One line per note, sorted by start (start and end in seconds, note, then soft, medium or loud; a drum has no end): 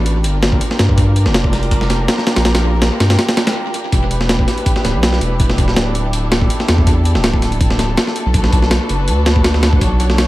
0.00 0.26 A1 medium
0.00 0.21 D4 medium
0.00 0.21 F#4 medium
0.00 0.21 A4 medium
0.00 0.21 B4 medium
0.06 closed hi-hat medium
0.24 0.60 G1 medium
0.24 3.89 D4 medium
0.24 3.89 F4 medium
0.24 8.30 G4 medium
0.24 3.89 A#4 medium
0.24 closed hi-hat medium
0.43 snare loud
0.43 closed hi-hat medium
0.52 kick medium
0.61 closed hi-hat medium
0.71 snare soft
0.79 1.27 G2 medium
0.79 snare medium
0.79 closed hi-hat medium
0.89 kick medium
0.98 kick loud
0.98 closed hi-hat medium
1.16 closed hi-hat medium
1.26 2.07 F1 medium
1.26 snare soft
1.34 snare loud
1.34 closed hi-hat medium
1.44 kick medium
1.53 snare soft
1.53 closed hi-hat medium
1.63 closed hi-hat soft
1.71 kick loud
1.71 closed hi-hat medium
1.81 snare soft
1.90 snare soft
1.90 closed hi-hat medium
2.08 snare loud
2.08 closed hi-hat medium
2.18 snare soft
2.27 snare loud
2.27 closed hi-hat medium
2.36 2.90 A#1 loud
2.36 snare loud
2.36 closed hi-hat medium
2.45 snare loud
2.45 closed hi-hat medium
2.55 snare medium
2.55 closed hi-hat medium
2.82 snare loud
2.82 closed hi-hat medium
3.00 3.17 G2 medium
3.00 snare loud
3.00 closed hi-hat medium
3.10 snare loud
3.10 closed hi-hat medium
3.19 snare loud
3.19 closed hi-hat medium
3.29 snare loud
3.29 closed hi-hat medium
3.37 snare loud
3.37 closed hi-hat medium
3.47 snare loud
3.47 closed hi-hat medium
3.74 closed hi-hat medium
3.92 4.46 E1 medium
3.92 8.30 D4 medium
3.92 8.30 E4 medium
3.92 6.11 B4 medium
3.92 kick loud
3.92 closed hi-hat medium
4.11 closed hi-hat medium
4.21 snare soft
4.29 snare loud
4.29 closed hi-hat medium
4.39 kick medium
4.48 snare soft
4.48 closed hi-hat medium
4.58 closed hi-hat soft
4.66 kick loud
4.66 closed hi-hat medium
4.76 snare soft
4.85 4.96 D1 loud
4.85 snare medium
4.85 closed hi-hat medium
4.94 5.20 B1 medium
5.03 snare loud
5.03 closed hi-hat medium
5.13 snare soft
5.21 5.70 E1 medium
5.21 closed hi-hat medium
5.40 kick loud
5.40 closed hi-hat medium
5.50 snare soft
5.58 kick medium
5.58 closed hi-hat medium
5.68 6.49 D1 medium
5.68 snare soft
5.76 snare loud
5.76 closed hi-hat medium
5.95 closed hi-hat medium
6.13 10.28 A4 medium
6.13 closed hi-hat medium
6.32 snare loud
6.32 closed hi-hat medium
6.42 kick medium
6.50 closed hi-hat medium
6.60 snare soft
6.68 7.17 E2 medium
6.68 snare loud
6.68 closed hi-hat medium
6.78 kick medium
6.87 kick loud
6.87 closed hi-hat medium
7.05 closed hi-hat medium
7.15 7.96 D1 medium
7.15 snare soft
7.24 snare loud
7.24 closed hi-hat medium
7.34 kick medium
7.42 snare soft
7.42 closed hi-hat medium
7.52 closed hi-hat soft
7.61 kick loud
7.61 closed hi-hat medium
7.70 snare soft
7.79 snare soft
7.79 closed hi-hat medium
7.97 snare loud
7.97 closed hi-hat medium
8.07 snare soft
8.16 closed hi-hat medium
8.26 8.79 B1 loud
8.33 10.28 D4 medium
8.33 10.28 F#4 medium
8.33 9.80 B4 medium
8.33 kick loud
8.33 closed hi-hat medium
8.44 snare soft
8.53 kick medium
8.53 closed hi-hat medium
8.62 snare soft
8.71 snare loud
8.71 closed hi-hat medium
8.89 9.09 F#1 medium
8.89 closed hi-hat medium
9.08 9.80 D2 medium
9.08 closed hi-hat medium
9.26 snare loud
9.26 closed hi-hat medium
9.36 kick medium
9.44 snare loud
9.44 closed hi-hat medium
9.54 snare soft
9.63 snare loud
9.63 closed hi-hat medium
9.73 kick medium
9.81 10.28 B1 loud
9.81 10.28 C#5 medium
9.81 kick loud
9.81 closed hi-hat medium
10.00 closed hi-hat medium
10.10 snare soft
10.18 snare loud
10.18 closed hi-hat medium